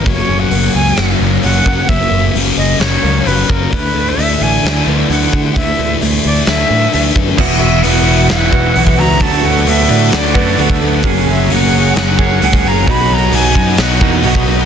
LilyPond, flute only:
\new Staff \with { instrumentName = "Flute" } { \time 4/4 \key fis \mixolydian \tempo 4 = 131 cis''8. fis''8. gis''4 r8 fis''4 | e''4 r8 dis''8 cis''4 b'8 ais'8 | b'8. e''8. gis''4 r8 fis''4 | e''4 r8 d''8 e''4. r8 |
r8 e''8 fis''4 fis''4. ais''8 | a''8 fis''8 e''4 d''4. r8 | r8 e''8 fis''4 fis''4. ais''8 | b''8 ais''8 gis''4 fis''4. r8 | }